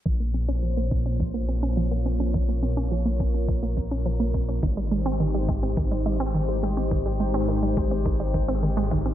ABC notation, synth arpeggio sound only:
X:1
M:4/4
L:1/16
Q:1/4=105
K:Bbdor
V:1 name="Synth arpeggio sound"
F, B, C D F, B, C D F, B, C D F, B, C D | F, B, C D F, B, C D F, B, C D F, B, C D | E, G, A, C E, G, A, C E, G, A, C E, G, A, C | E, G, A, C E, G, A, C E, G, E, C E, A, E, C |]